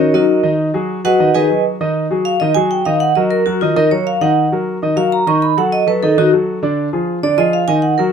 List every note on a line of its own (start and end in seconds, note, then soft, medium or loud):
0.00 0.11 D#3 medium
0.00 0.13 C#4 medium
0.00 0.11 D#4 medium
0.00 0.13 F#4 medium
0.00 0.12 A#4 medium
0.00 0.12 C#5 medium
0.00 0.11 D#5 medium
0.14 0.38 F#3 medium
0.14 0.42 D#4 medium
0.14 0.39 F#4 medium
0.14 0.42 F#4 medium
0.14 0.42 A#4 medium
0.14 0.39 A#4 medium
0.14 0.42 D#5 medium
0.43 0.68 D#3 medium
0.43 0.68 D#4 medium
0.43 0.68 D#5 medium
0.74 0.99 F#3 medium
0.74 0.99 F#4 medium
0.74 0.99 G#4 medium
1.04 1.17 F#3 medium
1.04 1.17 F#4 medium
1.04 1.33 F#4 medium
1.04 1.17 G#4 medium
1.04 1.33 B4 medium
1.04 1.33 D#5 medium
1.04 1.33 F#5 medium
1.20 1.32 D#3 medium
1.20 1.32 D#4 medium
1.20 1.32 D#5 medium
1.34 1.47 D#3 medium
1.34 1.47 D#4 medium
1.34 1.63 G#4 medium
1.34 1.63 B4 medium
1.34 1.63 D#5 medium
1.34 1.47 D#5 medium
1.34 1.63 G#5 medium
1.50 1.75 F#3 medium
1.50 1.75 F#4 medium
1.50 1.75 G#4 medium
1.81 2.05 D#3 medium
1.81 2.05 D#4 medium
1.81 2.05 D#5 medium
2.11 2.35 F#3 medium
2.11 2.35 F#4 medium
2.11 2.35 G#4 medium
2.25 2.40 F5 medium
2.40 2.53 D#3 medium
2.40 2.53 D#4 medium
2.40 2.55 D#5 medium
2.40 2.53 D#5 medium
2.55 2.81 F#3 medium
2.55 2.80 F#4 medium
2.55 2.81 G#4 medium
2.55 2.70 G#5 loud
2.71 2.85 G5 medium
2.85 3.11 D#3 medium
2.85 3.11 D#4 medium
2.85 3.11 D#5 medium
2.85 3.00 F5 medium
3.00 3.15 F#5 medium
3.15 3.41 F#3 medium
3.15 3.41 F#4 medium
3.15 3.41 A#4 medium
3.15 3.30 D#5 medium
3.31 3.45 A#4 medium
3.46 3.59 F#3 medium
3.46 3.60 F#4 medium
3.46 3.59 F#4 medium
3.46 3.59 A#4 medium
3.61 3.74 D#3 medium
3.61 3.74 D#4 medium
3.61 3.76 F4 medium
3.61 3.74 D#5 medium
3.76 3.88 D#3 medium
3.76 3.89 D#4 medium
3.76 3.91 A#4 medium
3.76 3.89 D#5 medium
3.91 4.16 F#3 medium
3.91 4.16 F#4 medium
3.91 4.17 A#4 medium
3.91 4.06 C#5 medium
4.07 4.21 F5 medium
4.21 4.46 D#3 medium
4.21 4.46 D#4 medium
4.21 4.46 D#5 medium
4.21 4.49 F#5 medium
4.52 4.77 F#3 medium
4.52 4.77 F#4 medium
4.52 4.77 A#4 medium
4.82 4.95 D#3 medium
4.82 4.95 D#4 medium
4.82 4.95 D#5 medium
4.96 5.21 F#3 medium
4.96 5.21 F#4 medium
4.96 5.22 A#4 medium
4.96 5.12 F5 medium
5.12 5.27 A#5 medium
5.27 5.52 D#3 medium
5.27 5.52 D#4 medium
5.27 5.52 D#5 medium
5.27 5.42 C#6 medium
5.42 5.57 B5 medium
5.57 5.82 F#3 medium
5.57 5.82 F#4 medium
5.57 5.82 A4 medium
5.57 5.72 F#5 medium
5.72 5.87 D#5 medium
5.87 5.99 F#3 medium
5.87 5.99 F#4 medium
5.87 6.00 A4 medium
5.87 6.02 B4 medium
6.03 6.15 D#3 medium
6.03 6.15 D#4 medium
6.03 6.17 A4 medium
6.03 6.15 D#5 medium
6.17 6.30 D#3 medium
6.17 6.30 D#4 medium
6.17 6.27 F#4 medium
6.17 6.30 D#5 medium
6.33 6.58 F#3 medium
6.33 6.58 F#4 medium
6.33 6.58 A4 medium
6.62 6.87 D3 medium
6.62 6.88 D4 medium
6.62 6.88 D5 medium
6.93 7.18 F3 medium
6.93 7.18 F4 medium
6.93 7.18 G#4 medium
7.23 7.35 D3 medium
7.23 7.36 D4 medium
7.23 7.36 D5 medium
7.23 7.38 D5 medium
7.38 7.63 F3 medium
7.38 7.63 F4 medium
7.38 7.63 G#4 medium
7.38 7.53 D#5 medium
7.53 7.68 F5 medium
7.68 7.93 D#3 medium
7.68 7.93 D#4 medium
7.68 7.93 D#5 medium
7.68 7.83 G#5 loud
7.82 7.98 F#5 medium
7.98 8.12 F#3 medium
7.98 8.12 F#4 medium
7.98 8.12 A#4 medium